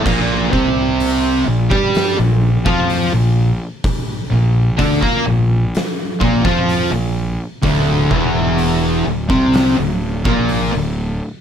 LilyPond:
<<
  \new Staff \with { instrumentName = "Distorted electric guitar" } { \clef bass \time 4/4 \key bes \lydian \tempo 4 = 63 <bes, bes>8 <c c'>4 bes,16 <g g'>8 bes,8 <f f'>8 bes,8 r16 | r8 bes,8 <d d'>16 <bes bes'>16 bes,8 r8 <bes, bes>16 <f f'>8 bes,8 r16 | <d, d>8 <e, e>4 d,16 <c c'>8 d,8 <bes, bes>8 d,8 r16 | }
  \new Staff \with { instrumentName = "Distorted electric guitar" } { \clef bass \time 4/4 \key bes \lydian <bes, bes>8 <c c'>4 bes,16 <g g'>8 bes,8 <f f'>8 bes,8 r16 | r8 bes,8 <d d'>16 <bes bes'>16 bes,8 r8 <bes, bes>16 <f f'>8 bes,8 r16 | <d, d>8 <e, e>4 d,16 <c c'>8 d,8 <bes, bes>8 d,8 r16 | }
  \new Staff \with { instrumentName = "Fingered electric bass" } { \clef bass \time 4/4 \key bes \lydian bes,,8 c,4 bes,,16 g,8 bes,,8 f,8 bes,,8 r16 | r8 bes,,8 d,16 bes,16 bes,,8 r8 bes,,16 f,8 bes,,8 r16 | d,,8 e,,4 d,,16 c,8 d,,8 bes,,8 d,,8 r16 | }
  \new DrumStaff \with { instrumentName = "Drums" } \drummode { \time 4/4 <cymc bd>8 bd8 hho8. bd16 <hho sn>8. bd16 hho4 | <hho bd>4 <hho bd>16 bd8. <hho sn>8 bd16 <bd sn>16 hho4 | <hho bd>8 bd8 hho8. bd16 <hho sn>8. bd16 hho4 | }
>>